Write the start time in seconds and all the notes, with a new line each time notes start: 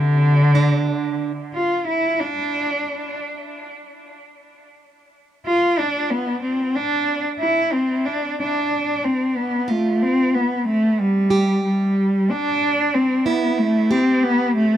Already playing: D3
0.55 D4
1.54 F4
1.87 E4
2.20 D4
5.46 F4
5.79 D4
6.10 B3
6.42 C4
6.76 D4
7.40 E4
7.73 C4
8.05 D4
8.39 D4
9.04 C4
9.36 B3
9.68 A3 F4
10.02 C4
10.34 B3
10.67 A3
10.99 G3
11.30 G4
11.64 G3
12.30 D4
12.94 C4
13.26 B3 E4
13.58 A3
13.91 C4 G4
14.23 B3
14.55 A3